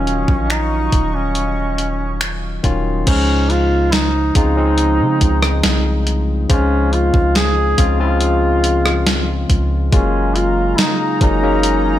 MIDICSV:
0, 0, Header, 1, 6, 480
1, 0, Start_track
1, 0, Key_signature, -5, "major"
1, 0, Tempo, 857143
1, 1718, Time_signature, 4, 2, 24, 8
1, 6714, End_track
2, 0, Start_track
2, 0, Title_t, "Analog synth pad"
2, 0, Program_c, 0, 89
2, 0, Note_on_c, 0, 54, 85
2, 0, Note_on_c, 0, 75, 76
2, 0, Note_on_c, 0, 77, 78
2, 0, Note_on_c, 0, 85, 93
2, 1697, Note_off_c, 0, 54, 0
2, 1697, Note_off_c, 0, 77, 0
2, 1699, Note_off_c, 0, 75, 0
2, 1700, Note_off_c, 0, 85, 0
2, 5558, Note_on_c, 0, 54, 89
2, 5558, Note_on_c, 0, 80, 80
2, 5559, Note_on_c, 0, 77, 77
2, 5559, Note_on_c, 0, 82, 101
2, 6714, Note_off_c, 0, 54, 0
2, 6714, Note_off_c, 0, 77, 0
2, 6714, Note_off_c, 0, 80, 0
2, 6714, Note_off_c, 0, 82, 0
2, 6714, End_track
3, 0, Start_track
3, 0, Title_t, "Duduk"
3, 0, Program_c, 1, 69
3, 0, Note_on_c, 1, 61, 96
3, 284, Note_on_c, 1, 63, 93
3, 293, Note_off_c, 1, 61, 0
3, 645, Note_on_c, 1, 61, 76
3, 653, Note_off_c, 1, 63, 0
3, 1361, Note_off_c, 1, 61, 0
3, 1723, Note_on_c, 1, 61, 103
3, 1966, Note_on_c, 1, 65, 106
3, 1974, Note_off_c, 1, 61, 0
3, 2206, Note_on_c, 1, 63, 99
3, 2215, Note_off_c, 1, 65, 0
3, 2442, Note_off_c, 1, 63, 0
3, 2445, Note_on_c, 1, 63, 104
3, 3379, Note_off_c, 1, 63, 0
3, 3646, Note_on_c, 1, 61, 102
3, 3884, Note_on_c, 1, 65, 101
3, 3892, Note_off_c, 1, 61, 0
3, 4121, Note_off_c, 1, 65, 0
3, 4124, Note_on_c, 1, 68, 114
3, 4458, Note_off_c, 1, 68, 0
3, 4484, Note_on_c, 1, 65, 98
3, 5299, Note_off_c, 1, 65, 0
3, 5564, Note_on_c, 1, 61, 88
3, 5804, Note_on_c, 1, 65, 92
3, 5812, Note_off_c, 1, 61, 0
3, 6043, Note_on_c, 1, 63, 94
3, 6051, Note_off_c, 1, 65, 0
3, 6280, Note_off_c, 1, 63, 0
3, 6284, Note_on_c, 1, 63, 105
3, 6714, Note_off_c, 1, 63, 0
3, 6714, End_track
4, 0, Start_track
4, 0, Title_t, "Tine electric piano"
4, 0, Program_c, 2, 4
4, 0, Control_c, 2, 64, 127
4, 0, Note_on_c, 2, 51, 74
4, 0, Note_on_c, 2, 54, 67
4, 0, Note_on_c, 2, 61, 62
4, 0, Note_on_c, 2, 65, 76
4, 671, Note_off_c, 2, 51, 0
4, 672, Note_off_c, 2, 54, 0
4, 674, Note_off_c, 2, 61, 0
4, 676, Note_off_c, 2, 65, 0
4, 1474, Note_on_c, 2, 51, 86
4, 1477, Note_on_c, 2, 54, 75
4, 1480, Note_on_c, 2, 61, 75
4, 1483, Note_on_c, 2, 65, 97
4, 1694, Note_off_c, 2, 51, 0
4, 1696, Note_off_c, 2, 54, 0
4, 1697, Note_off_c, 2, 61, 0
4, 1699, Note_off_c, 2, 65, 0
4, 1715, Note_on_c, 2, 49, 80
4, 1717, Note_on_c, 2, 53, 70
4, 1720, Note_on_c, 2, 56, 69
4, 1722, Note_on_c, 2, 72, 74
4, 1724, Note_on_c, 2, 63, 88
4, 1725, Control_c, 2, 64, 0
4, 1835, Control_c, 2, 64, 127
4, 2372, Note_off_c, 2, 49, 0
4, 2373, Note_off_c, 2, 53, 0
4, 2375, Note_off_c, 2, 56, 0
4, 2376, Note_off_c, 2, 72, 0
4, 2377, Note_off_c, 2, 63, 0
4, 2435, Note_on_c, 2, 49, 78
4, 2438, Note_on_c, 2, 53, 71
4, 2440, Note_on_c, 2, 56, 70
4, 2442, Note_on_c, 2, 60, 76
4, 2445, Note_on_c, 2, 65, 91
4, 2546, Note_off_c, 2, 49, 0
4, 2547, Note_off_c, 2, 53, 0
4, 2548, Note_off_c, 2, 56, 0
4, 2549, Note_off_c, 2, 60, 0
4, 2551, Note_off_c, 2, 65, 0
4, 2556, Note_on_c, 2, 61, 74
4, 2558, Note_on_c, 2, 53, 70
4, 2561, Note_on_c, 2, 56, 76
4, 2563, Note_on_c, 2, 60, 76
4, 2565, Note_on_c, 2, 63, 89
4, 3431, Note_off_c, 2, 61, 0
4, 3432, Note_off_c, 2, 53, 0
4, 3434, Note_off_c, 2, 56, 0
4, 3435, Note_off_c, 2, 60, 0
4, 3436, Note_off_c, 2, 63, 0
4, 3635, Note_on_c, 2, 49, 80
4, 3637, Note_on_c, 2, 53, 73
4, 3639, Note_on_c, 2, 56, 75
4, 3642, Note_on_c, 2, 72, 70
4, 3645, Note_on_c, 2, 65, 92
4, 4292, Note_off_c, 2, 49, 0
4, 4294, Note_off_c, 2, 53, 0
4, 4294, Note_off_c, 2, 56, 0
4, 4296, Note_off_c, 2, 72, 0
4, 4297, Note_off_c, 2, 65, 0
4, 4355, Note_on_c, 2, 49, 84
4, 4357, Note_on_c, 2, 53, 75
4, 4359, Note_on_c, 2, 56, 72
4, 4362, Note_on_c, 2, 60, 74
4, 4364, Note_on_c, 2, 65, 90
4, 4465, Note_off_c, 2, 49, 0
4, 4467, Note_off_c, 2, 53, 0
4, 4468, Note_off_c, 2, 56, 0
4, 4469, Note_off_c, 2, 60, 0
4, 4470, Note_off_c, 2, 65, 0
4, 4475, Note_on_c, 2, 49, 80
4, 4477, Note_on_c, 2, 53, 72
4, 4479, Note_on_c, 2, 56, 70
4, 4482, Note_on_c, 2, 60, 75
4, 4484, Note_on_c, 2, 65, 88
4, 5351, Note_off_c, 2, 49, 0
4, 5352, Note_off_c, 2, 53, 0
4, 5353, Note_off_c, 2, 56, 0
4, 5355, Note_off_c, 2, 60, 0
4, 5355, Note_off_c, 2, 65, 0
4, 5554, Note_on_c, 2, 49, 79
4, 5556, Note_on_c, 2, 54, 75
4, 5559, Note_on_c, 2, 56, 78
4, 5562, Note_on_c, 2, 58, 76
4, 5563, Note_on_c, 2, 65, 85
4, 5565, Control_c, 2, 64, 0
4, 5651, Control_c, 2, 64, 127
4, 6212, Note_off_c, 2, 49, 0
4, 6213, Note_off_c, 2, 54, 0
4, 6214, Note_off_c, 2, 56, 0
4, 6216, Note_off_c, 2, 58, 0
4, 6216, Note_off_c, 2, 65, 0
4, 6275, Note_on_c, 2, 49, 81
4, 6278, Note_on_c, 2, 54, 73
4, 6279, Note_on_c, 2, 56, 72
4, 6282, Note_on_c, 2, 58, 70
4, 6284, Note_on_c, 2, 61, 92
4, 6386, Note_off_c, 2, 49, 0
4, 6387, Note_off_c, 2, 54, 0
4, 6388, Note_off_c, 2, 56, 0
4, 6389, Note_off_c, 2, 58, 0
4, 6390, Note_off_c, 2, 61, 0
4, 6395, Note_on_c, 2, 49, 84
4, 6398, Note_on_c, 2, 54, 70
4, 6400, Note_on_c, 2, 56, 70
4, 6403, Note_on_c, 2, 58, 76
4, 6405, Note_on_c, 2, 61, 89
4, 6714, Note_off_c, 2, 49, 0
4, 6714, Note_off_c, 2, 54, 0
4, 6714, Note_off_c, 2, 56, 0
4, 6714, Note_off_c, 2, 58, 0
4, 6714, Note_off_c, 2, 61, 0
4, 6714, End_track
5, 0, Start_track
5, 0, Title_t, "808-style bass"
5, 0, Program_c, 3, 38
5, 0, Note_on_c, 3, 27, 108
5, 145, Note_off_c, 3, 27, 0
5, 159, Note_on_c, 3, 34, 98
5, 504, Note_off_c, 3, 34, 0
5, 519, Note_on_c, 3, 27, 93
5, 1456, Note_off_c, 3, 27, 0
5, 1480, Note_on_c, 3, 27, 101
5, 1709, Note_off_c, 3, 27, 0
5, 1720, Note_on_c, 3, 37, 116
5, 2416, Note_off_c, 3, 37, 0
5, 2439, Note_on_c, 3, 37, 107
5, 2802, Note_on_c, 3, 49, 99
5, 2810, Note_off_c, 3, 37, 0
5, 2914, Note_off_c, 3, 49, 0
5, 2920, Note_on_c, 3, 37, 110
5, 3149, Note_off_c, 3, 37, 0
5, 3163, Note_on_c, 3, 36, 106
5, 3621, Note_off_c, 3, 36, 0
5, 3639, Note_on_c, 3, 37, 117
5, 3984, Note_off_c, 3, 37, 0
5, 3998, Note_on_c, 3, 37, 96
5, 4344, Note_off_c, 3, 37, 0
5, 4359, Note_on_c, 3, 37, 104
5, 5296, Note_off_c, 3, 37, 0
5, 5319, Note_on_c, 3, 37, 114
5, 5549, Note_off_c, 3, 37, 0
5, 5559, Note_on_c, 3, 30, 114
5, 6019, Note_off_c, 3, 30, 0
5, 6279, Note_on_c, 3, 30, 104
5, 6714, Note_off_c, 3, 30, 0
5, 6714, End_track
6, 0, Start_track
6, 0, Title_t, "Drums"
6, 40, Note_on_c, 9, 42, 50
6, 96, Note_off_c, 9, 42, 0
6, 158, Note_on_c, 9, 36, 92
6, 214, Note_off_c, 9, 36, 0
6, 279, Note_on_c, 9, 42, 69
6, 282, Note_on_c, 9, 26, 94
6, 335, Note_off_c, 9, 42, 0
6, 338, Note_off_c, 9, 26, 0
6, 518, Note_on_c, 9, 36, 93
6, 518, Note_on_c, 9, 42, 71
6, 574, Note_off_c, 9, 36, 0
6, 574, Note_off_c, 9, 42, 0
6, 756, Note_on_c, 9, 42, 74
6, 812, Note_off_c, 9, 42, 0
6, 999, Note_on_c, 9, 42, 66
6, 1055, Note_off_c, 9, 42, 0
6, 1237, Note_on_c, 9, 26, 108
6, 1238, Note_on_c, 9, 42, 59
6, 1293, Note_off_c, 9, 26, 0
6, 1294, Note_off_c, 9, 42, 0
6, 1478, Note_on_c, 9, 36, 71
6, 1478, Note_on_c, 9, 42, 63
6, 1534, Note_off_c, 9, 36, 0
6, 1534, Note_off_c, 9, 42, 0
6, 1718, Note_on_c, 9, 36, 109
6, 1719, Note_on_c, 9, 42, 65
6, 1719, Note_on_c, 9, 49, 102
6, 1774, Note_off_c, 9, 36, 0
6, 1775, Note_off_c, 9, 42, 0
6, 1775, Note_off_c, 9, 49, 0
6, 1959, Note_on_c, 9, 42, 52
6, 2015, Note_off_c, 9, 42, 0
6, 2197, Note_on_c, 9, 42, 76
6, 2200, Note_on_c, 9, 38, 105
6, 2253, Note_off_c, 9, 42, 0
6, 2256, Note_off_c, 9, 38, 0
6, 2437, Note_on_c, 9, 36, 98
6, 2437, Note_on_c, 9, 42, 73
6, 2493, Note_off_c, 9, 36, 0
6, 2493, Note_off_c, 9, 42, 0
6, 2675, Note_on_c, 9, 42, 78
6, 2731, Note_off_c, 9, 42, 0
6, 2918, Note_on_c, 9, 42, 69
6, 2919, Note_on_c, 9, 36, 81
6, 2974, Note_off_c, 9, 42, 0
6, 2975, Note_off_c, 9, 36, 0
6, 3038, Note_on_c, 9, 37, 107
6, 3094, Note_off_c, 9, 37, 0
6, 3156, Note_on_c, 9, 38, 121
6, 3157, Note_on_c, 9, 42, 67
6, 3212, Note_off_c, 9, 38, 0
6, 3213, Note_off_c, 9, 42, 0
6, 3398, Note_on_c, 9, 42, 68
6, 3454, Note_off_c, 9, 42, 0
6, 3638, Note_on_c, 9, 36, 109
6, 3638, Note_on_c, 9, 42, 66
6, 3694, Note_off_c, 9, 36, 0
6, 3694, Note_off_c, 9, 42, 0
6, 3880, Note_on_c, 9, 42, 52
6, 3936, Note_off_c, 9, 42, 0
6, 3997, Note_on_c, 9, 36, 100
6, 4053, Note_off_c, 9, 36, 0
6, 4118, Note_on_c, 9, 42, 72
6, 4120, Note_on_c, 9, 38, 102
6, 4174, Note_off_c, 9, 42, 0
6, 4176, Note_off_c, 9, 38, 0
6, 4357, Note_on_c, 9, 42, 79
6, 4358, Note_on_c, 9, 36, 96
6, 4413, Note_off_c, 9, 42, 0
6, 4414, Note_off_c, 9, 36, 0
6, 4595, Note_on_c, 9, 42, 79
6, 4651, Note_off_c, 9, 42, 0
6, 4837, Note_on_c, 9, 42, 72
6, 4893, Note_off_c, 9, 42, 0
6, 4959, Note_on_c, 9, 37, 104
6, 5015, Note_off_c, 9, 37, 0
6, 5077, Note_on_c, 9, 38, 124
6, 5078, Note_on_c, 9, 42, 67
6, 5133, Note_off_c, 9, 38, 0
6, 5134, Note_off_c, 9, 42, 0
6, 5318, Note_on_c, 9, 36, 87
6, 5318, Note_on_c, 9, 42, 73
6, 5374, Note_off_c, 9, 36, 0
6, 5374, Note_off_c, 9, 42, 0
6, 5558, Note_on_c, 9, 36, 114
6, 5558, Note_on_c, 9, 42, 69
6, 5614, Note_off_c, 9, 36, 0
6, 5614, Note_off_c, 9, 42, 0
6, 5799, Note_on_c, 9, 42, 53
6, 5855, Note_off_c, 9, 42, 0
6, 6038, Note_on_c, 9, 42, 76
6, 6041, Note_on_c, 9, 38, 110
6, 6094, Note_off_c, 9, 42, 0
6, 6097, Note_off_c, 9, 38, 0
6, 6277, Note_on_c, 9, 36, 101
6, 6277, Note_on_c, 9, 42, 72
6, 6333, Note_off_c, 9, 36, 0
6, 6333, Note_off_c, 9, 42, 0
6, 6515, Note_on_c, 9, 42, 81
6, 6571, Note_off_c, 9, 42, 0
6, 6714, End_track
0, 0, End_of_file